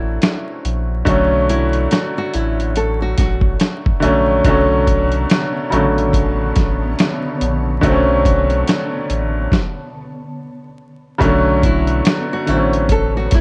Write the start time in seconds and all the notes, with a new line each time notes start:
Already playing: A1 D3 F#3 A3 C4 C#4 E4
0.22 snare, closed hi-hat
0.65 A#1, closed hi-hat
1.05 B1 D3 F#3 A3 C#4, kick, closed hi-hat
1.49 E4, closed hi-hat
1.73 closed hi-hat
1.91 F#4, snare, closed hi-hat
2.18 F#4
2.34 A1 E4, closed hi-hat
2.60 closed hi-hat
2.76 A4, closed hi-hat
3.02 F#4
3.18 A1 F#4, kick, snare, closed hi-hat
3.41 kick
3.60 snare, closed hi-hat
3.86 kick
4.00 A#1 D3 F#3 A3 C#4, closed hi-hat
4.44 B1 D3 F#3 A3 B3 C#5 A5, kick, closed hi-hat
4.49 C#4
4.87 kick, closed hi-hat
5.12 closed hi-hat
5.30 snare, closed hi-hat
5.70 A1 C#3 F#3 A3 C#4, closed hi-hat
5.76 D3
5.98 closed hi-hat
6.13 kick, closed hi-hat
6.56 A1, kick, snare, closed hi-hat
6.99 snare, closed hi-hat
7.41 A#1, closed hi-hat
7.81 B1 D3 F#3 A3 C4, kick, closed hi-hat
7.92 C#4
8.25 kick, closed hi-hat
8.50 closed hi-hat
8.67 snare, closed hi-hat
9.10 A1, closed hi-hat
9.52 kick, snare
11.18 B1 C#3 F#3 A3 B3 C#4 A4 B4 C#5, kick, closed hi-hat
11.25 D3
11.63 E4, kick, closed hi-hat
11.87 closed hi-hat
12.05 F#4, snare, closed hi-hat
12.33 F#4
12.46 A1 D3 F#3 A3 C4 E4, closed hi-hat
12.56 C#4
12.73 closed hi-hat
12.89 A4, kick, closed hi-hat
13.17 F#4
13.31 A1 E4, kick, snare, closed hi-hat